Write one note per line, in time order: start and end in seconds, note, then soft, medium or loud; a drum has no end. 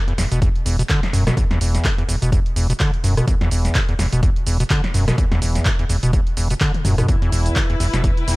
0.08 0.13 E2 medium
0.08 closed hi-hat soft
0.18 0.27 E1 medium
0.18 0.26 E2 medium
0.18 snare medium
0.18 open hi-hat loud
0.18 shaker medium
0.32 0.47 E1 medium
0.32 0.40 B2 medium
0.32 closed hi-hat soft
0.32 shaker soft
0.42 0.49 E2 medium
0.42 kick loud
0.42 closed hi-hat medium
0.42 shaker soft
0.56 closed hi-hat soft
0.66 0.83 E1 loud
0.66 0.77 E2 medium
0.66 open hi-hat loud
0.66 shaker medium
0.79 0.83 B2 medium
0.79 closed hi-hat medium
0.79 shaker soft
0.89 1.01 D3 loud
0.89 kick loud
0.89 clap loud
0.89 closed hi-hat soft
0.89 shaker soft
1.03 snare medium
1.03 closed hi-hat soft
1.13 1.31 E1 medium
1.13 1.24 F#2 loud
1.13 open hi-hat medium
1.13 shaker medium
1.27 1.35 B2 medium
1.27 cross-stick medium
1.27 snare medium
1.27 closed hi-hat medium
1.27 shaker soft
1.37 1.45 E2 medium
1.37 kick loud
1.37 closed hi-hat medium
1.37 shaker soft
1.51 1.59 E2 loud
1.51 snare medium
1.51 closed hi-hat soft
1.61 1.78 E1 loud
1.61 1.86 E2 medium
1.61 open hi-hat loud
1.61 shaker medium
1.75 snare soft
1.75 closed hi-hat medium
1.75 shaker soft
1.85 1.89 E3 medium
1.85 kick loud
1.85 cross-stick medium
1.85 clap loud
1.85 closed hi-hat medium
1.85 shaker soft
1.98 2.04 E2 medium
1.98 closed hi-hat soft
2.08 2.18 E1 medium
2.08 2.16 E2 medium
2.08 open hi-hat medium
2.08 shaker medium
2.22 2.37 E1 medium
2.22 2.31 B2 medium
2.22 closed hi-hat medium
2.22 shaker soft
2.32 2.40 E2 medium
2.32 kick loud
2.32 closed hi-hat medium
2.32 shaker soft
2.46 closed hi-hat soft
2.56 2.74 E1 loud
2.56 2.67 E2 medium
2.56 open hi-hat loud
2.56 shaker medium
2.70 2.73 B2 medium
2.70 closed hi-hat medium
2.70 shaker soft
2.80 2.91 D3 loud
2.80 kick loud
2.80 clap loud
2.80 closed hi-hat medium
2.80 shaker soft
2.94 closed hi-hat soft
3.04 3.21 E1 medium
3.04 3.15 F#2 loud
3.04 open hi-hat medium
3.04 shaker medium
3.17 3.26 B2 medium
3.17 cross-stick medium
3.17 closed hi-hat medium
3.17 shaker soft
3.28 3.35 E2 medium
3.28 kick loud
3.28 closed hi-hat medium
3.28 shaker soft
3.41 3.50 E2 loud
3.41 snare medium
3.41 closed hi-hat soft
3.51 3.69 E1 loud
3.51 3.77 E2 medium
3.51 open hi-hat loud
3.51 shaker medium
3.65 snare soft
3.65 closed hi-hat medium
3.65 shaker soft
3.75 3.80 E3 medium
3.75 kick loud
3.75 cross-stick medium
3.75 clap loud
3.75 closed hi-hat medium
3.75 shaker soft
3.89 3.94 E2 medium
3.89 closed hi-hat soft
3.99 4.08 E1 loud
3.99 4.07 E2 medium
3.99 snare medium
3.99 open hi-hat medium
3.99 shaker medium
4.13 4.28 E1 medium
4.13 4.21 B2 medium
4.13 closed hi-hat medium
4.13 shaker soft
4.23 4.30 E2 medium
4.23 kick loud
4.23 closed hi-hat medium
4.23 shaker soft
4.36 closed hi-hat soft
4.47 4.64 E1 loud
4.47 4.58 E2 medium
4.47 open hi-hat loud
4.47 shaker medium
4.60 4.64 B2 medium
4.60 closed hi-hat medium
4.60 shaker soft
4.70 4.82 D3 loud
4.70 kick loud
4.70 clap loud
4.70 closed hi-hat medium
4.70 shaker soft
4.84 snare medium
4.84 closed hi-hat soft
4.94 5.12 E1 medium
4.94 5.05 F#2 loud
4.94 open hi-hat medium
4.94 shaker medium
5.08 5.16 B2 medium
5.08 cross-stick medium
5.08 snare medium
5.08 closed hi-hat medium
5.08 shaker soft
5.18 5.26 E2 medium
5.18 kick loud
5.18 closed hi-hat medium
5.18 shaker soft
5.32 5.40 E2 loud
5.32 snare medium
5.32 closed hi-hat soft
5.42 5.59 E1 loud
5.42 5.67 E2 medium
5.42 open hi-hat loud
5.42 shaker medium
5.55 snare soft
5.55 closed hi-hat medium
5.55 shaker soft
5.65 5.70 E3 medium
5.65 kick loud
5.65 cross-stick medium
5.65 clap loud
5.65 closed hi-hat medium
5.65 shaker soft
5.79 5.85 E2 medium
5.79 closed hi-hat soft
5.89 5.99 E1 loud
5.89 5.97 E2 medium
5.89 open hi-hat medium
5.89 shaker medium
6.03 6.18 E1 medium
6.03 6.12 B2 medium
6.03 closed hi-hat medium
6.03 shaker soft
6.13 6.21 E2 medium
6.13 kick loud
6.13 closed hi-hat medium
6.13 shaker soft
6.27 closed hi-hat soft
6.37 6.54 E1 loud
6.37 6.48 E2 medium
6.37 open hi-hat loud
6.37 shaker medium
6.50 6.54 B2 medium
6.50 closed hi-hat medium
6.50 shaker soft
6.61 6.72 D3 loud
6.61 kick loud
6.61 clap loud
6.61 closed hi-hat medium
6.61 shaker soft
6.74 closed hi-hat soft
6.74 high tom medium
6.85 7.02 E1 medium
6.85 6.96 F#2 loud
6.85 open hi-hat medium
6.85 mid tom medium
6.85 shaker medium
6.98 7.07 B2 medium
6.98 cross-stick medium
6.98 closed hi-hat medium
6.98 mid tom medium
6.98 shaker soft
7.08 7.16 E2 medium
7.08 8.36 E4 medium
7.08 kick loud
7.08 closed hi-hat medium
7.08 shaker soft
7.22 7.31 E2 loud
7.22 closed hi-hat soft
7.32 7.50 E1 loud
7.32 7.58 E2 medium
7.32 open hi-hat loud
7.32 shaker medium
7.44 8.36 B4 medium
7.44 closed hi-hat medium
7.44 shaker soft
7.56 7.61 E3 medium
7.56 kick loud
7.56 cross-stick medium
7.56 clap loud
7.56 closed hi-hat medium
7.56 shaker soft
7.70 7.75 E2 medium
7.70 closed hi-hat soft
7.80 7.89 E1 loud
7.80 7.88 E2 medium
7.80 open hi-hat medium
7.80 shaker medium
7.94 8.09 E1 medium
7.94 8.02 B2 medium
7.94 snare medium
7.94 closed hi-hat medium
7.94 shaker soft
8.04 8.11 E2 medium
8.04 kick loud
8.04 closed hi-hat medium
8.04 shaker soft
8.17 closed hi-hat soft
8.23 8.36 G5 medium
8.28 8.36 E1 loud
8.28 8.36 E2 medium
8.28 open hi-hat loud
8.28 shaker medium